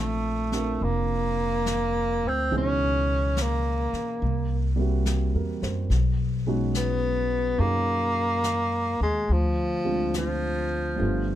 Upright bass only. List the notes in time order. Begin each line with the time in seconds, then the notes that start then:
Already playing: A#1
0.81 F1
2.24 D2
2.52 C#2
3.93 muted upright bass stroke
4.22 C2
5.34 E2
5.62 F#2
5.90 B1
7.59 F#2
9.01 D#2
9.29 D2
11.00 G1